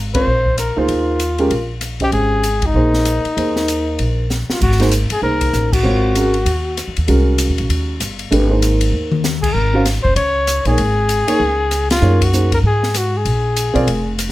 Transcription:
Already playing: G#1
0.14 C4 F4 A#4 C5 C#5, kick, ride
0.26 A#1
0.46 kick
0.58 A#4, cross-stick, hi-hat pedal, ride
0.76 C#2 A#3 D#4 F4 G#4 C5
0.88 D#2, ride
1.20 hi-hat pedal, ride
1.38 G#3 C#4 G4 A#4, ride
1.50 A#1, ride
1.81 cross-stick, hi-hat pedal, ride
2.00 C#4 G4 C5 D#5, kick, ride
2.12 G#1 G#4, ride
2.43 hi-hat pedal, ride
2.62 kick, ride
2.66 D#4
2.74 A#1 A#3 D#4 G#4 C5
2.94 snare
3.05 cross-stick, hi-hat pedal, ride
3.25 muted upright bass stroke, ride
3.36 D#2 A#3 D#4 G#4 C5, ride
3.56 snare
3.68 hi-hat pedal, ride
3.99 A#1, ride
4.30 snare, hi-hat pedal
4.49 F4, muted upright bass stroke, snare
4.61 G#1 F#4, kick, crash
4.72 snare
4.80 A#3 D#4 G#4 C5, snare, ride
4.91 hi-hat pedal, ride
5.10 F#1 G#4, ride
5.22 C2 A#3 D#4 G#4 A#4 C5
5.41 kick, ride
5.53 A1, cross-stick, hi-hat pedal
5.73 F#4, kick, crash
5.83 G#1 C4 F4 A#4 C#5
6.15 G#3 C#4 F#4 A#4, hi-hat pedal, ride
6.34 ride
6.46 D#2, ride
6.77 cross-stick, hi-hat pedal, ride
6.88 F2
6.97 D#2, ride
7.07 C2 G#3 C#4 F#4 A#4, ride
7.38 hi-hat pedal, ride
7.49 D#2
7.58 A#1, ride
7.69 D#2, ride
8.00 G1, cross-stick, hi-hat pedal, ride
8.19 ride
8.31 G#1 A3 D4 G4 B4, ride
8.50 A#3 D#4 G#4 C5
8.62 hi-hat pedal, ride
8.81 ride
8.92 D#2
9.12 mid tom
9.24 snare, hi-hat pedal
9.42 G#4, kick, crash
9.53 G#1 A#4
9.74 C#4 F#4 C5 F5
9.86 snare, hi-hat pedal, ride
10.03 F#1 C5, kick
10.16 C#2 C#5, ride
10.47 cross-stick, hi-hat pedal, ride
10.65 A#1 A#3 D#4 G#4 C#5, ride
10.78 G#1, ride
11.09 hi-hat pedal, ride
11.27 A#3 D#4 G#4 C#5, ride
11.40 C#2
11.71 cross-stick, hi-hat pedal, ride
11.90 F4, snare, ride
12.02 F#2 A#3 D#4 G#4 C#5
12.21 F#4, kick, ride
12.33 A#3 D#4 G#4 C5, hi-hat pedal
12.52 A#4, kick, ride
12.63 G#2 G#4
12.83 snare
12.94 F#4, cross-stick, hi-hat pedal, ride
13.17 G#4
13.25 A#1, ride
13.56 hi-hat pedal, ride
13.74 B1 C4 F4 A#4 D5, kick, ride
13.87 F1, ride
14.19 cross-stick, hi-hat pedal, ride

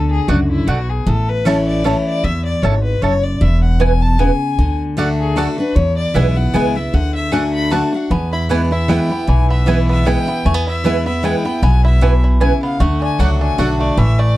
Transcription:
Already playing: D2 D3 A4
0.11 G#4
0.28 C#2 F#2 A3 F#4 D5 F#5
0.51 E4
0.67 B1 B2 A3 F#4 D5 F#5
0.90 G#4
1.06 A1 A2 A4
1.29 B4
1.45 E3 A3 C#4 E4 A4 C#5 E5 A5
1.67 D5
1.84 E3 A3 C#4 E4 A4 C#5 E5 A5
2.07 D5
2.24 E2 E5
2.45 D5
2.63 G#1 G#2 C#4 A4 C#5 E5 A5
2.84 B4
3.02 F#1 F#2 C#4 A4 C#5 E5 A5
3.23 D5
3.41 E1 E2 E5
3.63 F#5
3.80 B2 B3 E4 B4 G#5
4.02 A5
4.19 C#3 B3 E4 B4 G#5
4.58 D2 D3
4.97 D3 A3 D4 F#4 D5 F#5
5.20 G#4
5.36 D3 A3 D4 F#4 A4 D5 F#5
5.58 D4 F#4 B4
5.76 E2 C#5
5.97 D5
6.14 B1 E3 G#3 B3 E4 B4 E5 G#5
6.36 B3 E4 F#5
6.54 C#2 E3 G#3 B3 E4 B4 G#5
6.75 B3 E4 E5
6.93 D2 D3 F#5
7.15 E5
7.32 D3 A3 D4 F#4 D5 F#5 G#5
7.54 B5
7.70 D3 A3 D4 F#4 D5 F#5 A5
7.93 D4 F#4 F#5
8.10 E2 B3 G#5
8.32 E4 B5
8.49 E3 G#3 B3 E4 B4 G#5
8.71 B3 E4 E5
8.88 E3 G#3 B3 E4 B4 G5 G#5
9.10 B3 E4
9.27 B1 B2 E3 G#5
9.50 B3 E5
9.66 E3 G#3 B3 E4 B4 G#5
9.89 B3 E5
10.05 E3 G#3 B3 E4 B4 G5 G#5
10.27 B3 E4
10.45 E2 A3 G#5
10.54 B3
10.67 E4 E5
10.84 E3 G#3 B3 E4 B4 G#5
11.06 B3 E4 E5
11.23 E3 G#3 B3 E4 B4 G5 G#5
11.45 B3 E4
11.62 B1 B2 B3 G#5
11.85 E4 E5
12.01 B2 E3 B3 E4 B4 G#5
12.24 E4
12.40 C#3 B3 E4 B4 G#5
12.63 B3 F5
12.80 D2 D3 A3 F#5
13.02 D4 G#5
13.19 C#2 F#3 A3 D4 F#4 D5 F#5
13.41 D4 G#5
13.58 B1 D3 A3 D4 F#4 D5 F#5
13.80 A3 D5
13.97 A1 A2 E3 E5
14.19 A3 D5

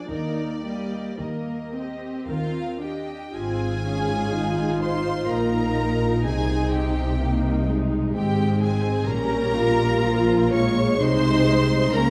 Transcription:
0.09 D#2 D#3 A#3 D#4 A#4 D5
0.65 G3 A#3 G4 D#5
1.19 D#2 D#3 A#3 A#4 D#5
1.74 C4 G4 D#5
2.28 D#2 D#3 F4 A#4 F5
2.82 D4 G4 D#5 G5
3.34 G#1 G#2 C4 F4 G#4 G#5
3.85 C#4
4.33 D#4
4.81 C5 C6
5.29 A#1 A#2 D#4 A#4 A#5
6.25 C2 C3 C4 D#4 G#4 G#5
6.72 G4 G5
7.20 A#3 D#4
7.68 G#3
8.16 G#1 G#2 C4 G4 G5
8.63 G#4 G#5
9.08 A#1 A#2 G3 C#4 A#4 A#5
9.57 F4
10.05 F3
10.51 G#3 C#5 C#6
10.99 C2 C3 D#4 C5 C6
11.92 C#2 C#3 A#3 C#4 A#4 A#5

